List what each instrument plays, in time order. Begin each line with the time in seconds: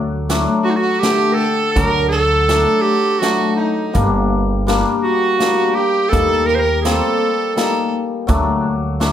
Already playing: upright bass D2, hammered dulcimer F#3
0.29 hammered dulcimer F#3 A3 D4, snare, closed hi-hat
0.64 violin F#4, clarinet F#4
0.70 clarinet D#4
0.76 clarinet F#4, violin F#4
1.00 hammered dulcimer D3 A3 D4, clarinet G4, violin G4, snare, closed hi-hat
1.11 violin G4 A4
1.32 clarinet A4 A#4
1.40 violin A4
1.72 hammered dulcimer F#3, clarinet A#4
1.76 upright bass D2, hammered dulcimer D4, violin A#4, kick, closed hi-hat
2.08 clarinet A4, violin A4
2.49 hammered dulcimer F#3 A3 D4, snare, closed hi-hat
2.66 violin A4
2.82 clarinet G4
3.20 hammered dulcimer F#3 A3 D4, clarinet F#4, violin F#4, snare, closed hi-hat
3.56 clarinet D#4, violin D#4
3.93 upright bass G1, hammered dulcimer G3 A#3 D4, kick, closed hi-hat
4.67 hammered dulcimer G3 A#3 D4, snare, closed hi-hat
5.03 clarinet F#4, violin F#4
5.38 hammered dulcimer G3 A#3 D4, snare, closed hi-hat
5.56 violin F#4
5.74 violin G4, clarinet G4
6.09 upright bass D#2, hammered dulcimer G3 A#3 D#4, clarinet A4, violin A4, kick, closed hi-hat
6.46 clarinet A#4, violin A#4
6.55 clarinet A#4 C5
6.61 violin A#4
6.82 hammered dulcimer G3 A#3 C4, clarinet A4, violin A4, snare, closed hi-hat
7.56 hammered dulcimer G3 A#3 D#4, violin A4, snare, closed hi-hat
8.27 upright bass D2, hammered dulcimer F#3 A3 D4, kick, closed hi-hat
9.00 hammered dulcimer F#3 A3 D4, snare, closed hi-hat